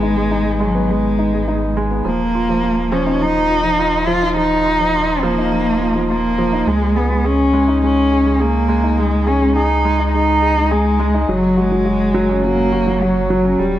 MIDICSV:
0, 0, Header, 1, 4, 480
1, 0, Start_track
1, 0, Tempo, 576923
1, 1710, Time_signature, 4, 2, 24, 8
1, 11474, End_track
2, 0, Start_track
2, 0, Title_t, "Cello"
2, 0, Program_c, 0, 42
2, 0, Note_on_c, 0, 56, 104
2, 521, Note_on_c, 0, 54, 84
2, 534, Note_off_c, 0, 56, 0
2, 752, Note_on_c, 0, 56, 91
2, 765, Note_off_c, 0, 54, 0
2, 1471, Note_off_c, 0, 56, 0
2, 1703, Note_on_c, 0, 58, 110
2, 2422, Note_on_c, 0, 61, 90
2, 2434, Note_off_c, 0, 58, 0
2, 2676, Note_on_c, 0, 63, 107
2, 2688, Note_off_c, 0, 61, 0
2, 3386, Note_on_c, 0, 65, 109
2, 3399, Note_off_c, 0, 63, 0
2, 3628, Note_off_c, 0, 65, 0
2, 3635, Note_on_c, 0, 63, 109
2, 4351, Note_on_c, 0, 58, 103
2, 4364, Note_off_c, 0, 63, 0
2, 5065, Note_off_c, 0, 58, 0
2, 5070, Note_on_c, 0, 58, 102
2, 5557, Note_on_c, 0, 56, 101
2, 5570, Note_off_c, 0, 58, 0
2, 5790, Note_on_c, 0, 59, 85
2, 5803, Note_off_c, 0, 56, 0
2, 6031, Note_on_c, 0, 61, 99
2, 6044, Note_off_c, 0, 59, 0
2, 6511, Note_off_c, 0, 61, 0
2, 6517, Note_on_c, 0, 61, 106
2, 7000, Note_on_c, 0, 58, 104
2, 7013, Note_off_c, 0, 61, 0
2, 7486, Note_on_c, 0, 56, 97
2, 7499, Note_off_c, 0, 58, 0
2, 7716, Note_on_c, 0, 61, 92
2, 7728, Note_off_c, 0, 56, 0
2, 7950, Note_off_c, 0, 61, 0
2, 7955, Note_on_c, 0, 63, 95
2, 8399, Note_off_c, 0, 63, 0
2, 8420, Note_on_c, 0, 63, 106
2, 8914, Note_on_c, 0, 56, 96
2, 8927, Note_off_c, 0, 63, 0
2, 9321, Note_off_c, 0, 56, 0
2, 9321, Note_on_c, 0, 56, 65
2, 9391, Note_on_c, 0, 54, 93
2, 9403, Note_off_c, 0, 56, 0
2, 9636, Note_on_c, 0, 56, 96
2, 9648, Note_off_c, 0, 54, 0
2, 10351, Note_on_c, 0, 58, 105
2, 10363, Note_off_c, 0, 56, 0
2, 10830, Note_on_c, 0, 54, 88
2, 10842, Note_off_c, 0, 58, 0
2, 11303, Note_on_c, 0, 55, 95
2, 11316, Note_off_c, 0, 54, 0
2, 11474, Note_off_c, 0, 55, 0
2, 11474, End_track
3, 0, Start_track
3, 0, Title_t, "Grand piano"
3, 0, Program_c, 1, 0
3, 0, Control_c, 1, 64, 127
3, 0, Note_on_c, 1, 56, 78
3, 0, Note_on_c, 1, 59, 69
3, 0, Note_on_c, 1, 63, 71
3, 22, Note_off_c, 1, 63, 0
3, 22, Note_on_c, 1, 63, 65
3, 94, Note_off_c, 1, 63, 0
3, 138, Note_off_c, 1, 56, 0
3, 138, Note_on_c, 1, 56, 67
3, 212, Note_off_c, 1, 56, 0
3, 259, Note_on_c, 1, 63, 74
3, 378, Note_off_c, 1, 63, 0
3, 500, Note_on_c, 1, 56, 88
3, 619, Note_off_c, 1, 56, 0
3, 625, Note_off_c, 1, 59, 0
3, 625, Note_on_c, 1, 59, 72
3, 696, Note_off_c, 1, 59, 0
3, 747, Note_on_c, 1, 56, 69
3, 862, Note_off_c, 1, 56, 0
3, 987, Note_on_c, 1, 63, 65
3, 1057, Note_off_c, 1, 63, 0
3, 1109, Note_on_c, 1, 56, 63
3, 1178, Note_off_c, 1, 56, 0
3, 1230, Note_on_c, 1, 63, 74
3, 1344, Note_off_c, 1, 63, 0
3, 1471, Note_on_c, 1, 56, 90
3, 1584, Note_off_c, 1, 56, 0
3, 1588, Note_on_c, 1, 59, 70
3, 1658, Note_off_c, 1, 59, 0
3, 1706, Note_on_c, 1, 53, 80
3, 1720, Control_c, 1, 64, 0
3, 1822, Note_off_c, 1, 53, 0
3, 1875, Control_c, 1, 64, 127
3, 1954, Note_on_c, 1, 65, 66
3, 2020, Note_off_c, 1, 65, 0
3, 2074, Note_on_c, 1, 53, 64
3, 2140, Note_off_c, 1, 53, 0
3, 2191, Note_on_c, 1, 65, 71
3, 2304, Note_off_c, 1, 65, 0
3, 2432, Note_on_c, 1, 53, 90
3, 2545, Note_off_c, 1, 53, 0
3, 2550, Note_on_c, 1, 63, 71
3, 2618, Note_off_c, 1, 63, 0
3, 2672, Note_on_c, 1, 53, 73
3, 2785, Note_off_c, 1, 53, 0
3, 2910, Note_on_c, 1, 65, 63
3, 2978, Note_off_c, 1, 65, 0
3, 3029, Note_on_c, 1, 53, 68
3, 3098, Note_off_c, 1, 53, 0
3, 3149, Note_on_c, 1, 65, 78
3, 3263, Note_off_c, 1, 65, 0
3, 3388, Note_on_c, 1, 53, 86
3, 3503, Note_off_c, 1, 53, 0
3, 3510, Note_on_c, 1, 63, 70
3, 3578, Note_off_c, 1, 63, 0
3, 3633, Note_on_c, 1, 53, 79
3, 3745, Note_off_c, 1, 53, 0
3, 3872, Note_on_c, 1, 65, 70
3, 3939, Note_off_c, 1, 65, 0
3, 3996, Note_on_c, 1, 53, 67
3, 4061, Note_off_c, 1, 53, 0
3, 4121, Note_on_c, 1, 65, 69
3, 4229, Note_off_c, 1, 65, 0
3, 4353, Note_on_c, 1, 53, 94
3, 4465, Note_off_c, 1, 53, 0
3, 4476, Note_on_c, 1, 63, 73
3, 4541, Note_off_c, 1, 63, 0
3, 4597, Note_on_c, 1, 53, 70
3, 4708, Note_off_c, 1, 53, 0
3, 4834, Note_on_c, 1, 65, 67
3, 4901, Note_off_c, 1, 65, 0
3, 4957, Note_on_c, 1, 53, 66
3, 5022, Note_off_c, 1, 53, 0
3, 5077, Note_on_c, 1, 65, 77
3, 5188, Note_off_c, 1, 65, 0
3, 5312, Note_on_c, 1, 53, 85
3, 5425, Note_off_c, 1, 53, 0
3, 5433, Note_on_c, 1, 63, 73
3, 5500, Note_off_c, 1, 63, 0
3, 5548, Note_on_c, 1, 56, 75
3, 5560, Control_c, 1, 64, 0
3, 5663, Note_off_c, 1, 56, 0
3, 5691, Control_c, 1, 64, 127
3, 5786, Note_on_c, 1, 68, 68
3, 5856, Note_off_c, 1, 68, 0
3, 5908, Note_on_c, 1, 56, 67
3, 5978, Note_off_c, 1, 56, 0
3, 6029, Note_on_c, 1, 68, 70
3, 6143, Note_off_c, 1, 68, 0
3, 6268, Note_on_c, 1, 56, 87
3, 6383, Note_off_c, 1, 56, 0
3, 6391, Note_on_c, 1, 63, 74
3, 6459, Note_off_c, 1, 63, 0
3, 6512, Note_on_c, 1, 56, 72
3, 6625, Note_off_c, 1, 56, 0
3, 6753, Note_on_c, 1, 68, 67
3, 6820, Note_off_c, 1, 68, 0
3, 6870, Note_on_c, 1, 56, 66
3, 6938, Note_off_c, 1, 56, 0
3, 6983, Note_on_c, 1, 68, 74
3, 7101, Note_off_c, 1, 68, 0
3, 7224, Note_on_c, 1, 56, 89
3, 7341, Note_off_c, 1, 56, 0
3, 7350, Note_on_c, 1, 63, 73
3, 7418, Note_off_c, 1, 63, 0
3, 7470, Note_on_c, 1, 56, 76
3, 7584, Note_off_c, 1, 56, 0
3, 7711, Note_on_c, 1, 68, 70
3, 7779, Note_off_c, 1, 68, 0
3, 7834, Note_on_c, 1, 56, 70
3, 7900, Note_off_c, 1, 56, 0
3, 7951, Note_on_c, 1, 68, 80
3, 8065, Note_off_c, 1, 68, 0
3, 8195, Note_on_c, 1, 56, 87
3, 8307, Note_off_c, 1, 56, 0
3, 8313, Note_on_c, 1, 63, 75
3, 8380, Note_off_c, 1, 63, 0
3, 8436, Note_on_c, 1, 56, 72
3, 8547, Note_off_c, 1, 56, 0
3, 8667, Note_on_c, 1, 68, 64
3, 8737, Note_off_c, 1, 68, 0
3, 8795, Note_on_c, 1, 56, 73
3, 8861, Note_off_c, 1, 56, 0
3, 8913, Note_on_c, 1, 68, 82
3, 9025, Note_off_c, 1, 68, 0
3, 9147, Note_on_c, 1, 56, 96
3, 9263, Note_off_c, 1, 56, 0
3, 9270, Note_on_c, 1, 63, 74
3, 9338, Note_off_c, 1, 63, 0
3, 9391, Note_on_c, 1, 54, 84
3, 9400, Control_c, 1, 64, 0
3, 9505, Note_off_c, 1, 54, 0
3, 9525, Control_c, 1, 64, 127
3, 9627, Note_on_c, 1, 66, 68
3, 9697, Note_off_c, 1, 66, 0
3, 9749, Note_on_c, 1, 54, 67
3, 9818, Note_off_c, 1, 54, 0
3, 9866, Note_on_c, 1, 66, 73
3, 9982, Note_off_c, 1, 66, 0
3, 10103, Note_on_c, 1, 54, 98
3, 10220, Note_off_c, 1, 54, 0
3, 10223, Note_on_c, 1, 61, 71
3, 10295, Note_off_c, 1, 61, 0
3, 10352, Note_on_c, 1, 54, 80
3, 10465, Note_off_c, 1, 54, 0
3, 10585, Note_on_c, 1, 66, 70
3, 10656, Note_off_c, 1, 66, 0
3, 10708, Note_on_c, 1, 54, 70
3, 10777, Note_off_c, 1, 54, 0
3, 10831, Note_on_c, 1, 66, 75
3, 10945, Note_off_c, 1, 66, 0
3, 11066, Note_on_c, 1, 54, 91
3, 11182, Note_off_c, 1, 54, 0
3, 11186, Note_on_c, 1, 61, 72
3, 11256, Note_off_c, 1, 61, 0
3, 11310, Note_on_c, 1, 55, 84
3, 11322, Control_c, 1, 64, 0
3, 11424, Note_off_c, 1, 55, 0
3, 11474, End_track
4, 0, Start_track
4, 0, Title_t, "Sub bass"
4, 0, Program_c, 2, 38
4, 0, Note_on_c, 2, 32, 81
4, 1683, Note_off_c, 2, 32, 0
4, 1709, Note_on_c, 2, 27, 86
4, 5525, Note_off_c, 2, 27, 0
4, 5547, Note_on_c, 2, 37, 82
4, 9364, Note_off_c, 2, 37, 0
4, 9389, Note_on_c, 2, 30, 82
4, 11286, Note_off_c, 2, 30, 0
4, 11308, Note_on_c, 2, 27, 79
4, 11474, Note_off_c, 2, 27, 0
4, 11474, End_track
0, 0, End_of_file